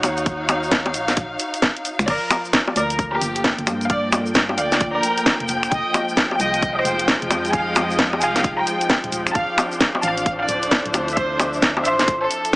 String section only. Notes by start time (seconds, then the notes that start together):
Already playing: D#4 F#4 C#5 F5
2.08 F3
2.44 A#3
3.44 G5
5.93 G#3
6.75 D#5
9.35 D4
9.57 C5
10.90 E5